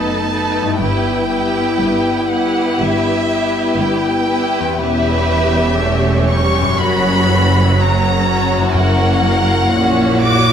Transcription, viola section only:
0.00 0.29 B3 soft
0.00 0.29 D#4 soft
0.32 0.80 B3 soft
0.32 0.79 D#4 soft
0.81 1.29 B3 soft
0.81 1.29 E4 soft
1.30 2.28 B3 soft
1.30 2.28 E4 soft
2.31 3.27 B3 soft
2.31 3.27 E4 soft
3.29 4.26 B3 soft
3.29 4.25 E4 soft
4.29 4.78 B3 soft
4.29 4.78 E4 soft
4.79 5.75 B3 medium
4.79 6.75 G4 medium
5.79 6.29 A3 soft
6.29 6.79 G3 medium
6.78 7.28 F#3 soft
6.78 7.78 F#4 medium
7.28 7.78 E3 medium
7.77 8.26 F#3 medium
7.77 8.75 C#4 soft
8.27 8.75 F#3 medium
8.76 9.73 A#3 medium
8.76 9.72 C#4 medium
9.74 10.53 A#3 soft
9.74 10.21 C#4 medium
10.22 10.53 F#4 medium

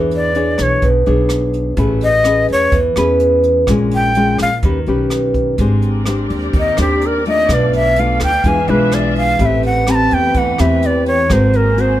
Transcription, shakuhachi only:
0.16 0.64 D5 medium
0.62 0.84 C#5 medium
2.04 2.47 D#5 loud
2.52 2.73 C#5 medium
3.95 4.38 G5 loud
4.42 4.56 F5 medium
6.59 6.79 D#5 medium
6.81 7.08 G4 medium
7.06 7.27 A#4 medium
7.28 7.55 D#5 loud
7.54 7.75 D5 medium
7.76 8.01 E5 medium
7.99 8.22 F5 medium
8.23 8.49 G5 medium
8.48 8.71 G#5 medium
8.69 8.96 B4 medium
8.94 9.17 D5 medium
9.18 9.42 F5 loud
9.42 9.65 E5 medium
9.42 9.47 F5 medium
9.66 9.92 F#5 medium
9.91 9.96 A#5 medium
9.95 10.15 A5 medium
10.14 10.39 G5 medium
10.38 10.62 F#5 medium
10.61 10.88 E5 medium
10.86 11.07 D5 medium
11.07 11.34 C#5 medium
11.32 11.58 C5 medium
11.56 11.82 A#4 medium
11.80 12.00 C5 medium

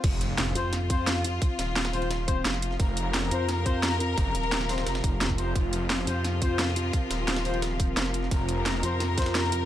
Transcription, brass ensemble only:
0.56 0.71 C4 medium
0.56 0.71 F4 medium
0.56 0.71 C5 loud
0.90 1.05 C4 medium
0.90 1.05 F4 medium
0.90 1.05 C5 loud
1.93 2.09 C4 medium
1.93 2.09 F4 medium
1.93 2.09 C5 loud
2.28 2.43 C4 loud
2.28 2.43 F4 medium
2.28 2.43 C5 loud
3.31 3.47 C4 medium
3.31 3.47 F4 medium
3.31 3.47 C5 loud
3.66 3.81 C4 loud
3.66 3.81 F4 medium
3.66 3.81 C5 loud
4.69 4.85 C4 loud
4.69 4.85 F4 medium
4.69 4.85 C5 loud
5.38 5.54 C4 medium
5.38 5.54 F4 medium
5.38 5.54 C5 medium
6.07 6.23 C4 medium
6.07 6.23 F4 medium
6.07 6.23 C5 loud
6.42 6.57 C4 medium
6.42 6.57 F4 medium
6.42 6.57 C5 loud
7.45 7.60 C4 medium
7.45 7.60 F4 medium
7.45 7.60 C5 loud
8.83 8.98 C4 medium
8.83 8.98 F4 medium
8.83 8.98 C5 loud
9.18 9.33 C4 medium
9.18 9.33 F4 medium
9.18 9.33 C5 loud

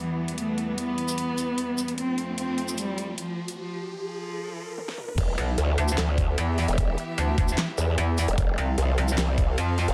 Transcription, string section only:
0.00 1.95 E2 medium
0.00 1.95 E3 medium
0.00 1.95 G3 medium
0.00 1.95 B3 medium
1.98 3.56 F2 medium
1.98 3.56 F3 medium
1.98 3.56 A3 medium
1.98 3.56 C4 medium
5.18 8.35 E3 medium
5.18 8.35 B3 medium
5.18 8.35 G4 medium
5.18 8.35 E5 medium
8.38 9.94 F3 medium
8.38 9.94 C4 medium
8.38 9.94 A4 medium
8.38 9.94 F5 medium

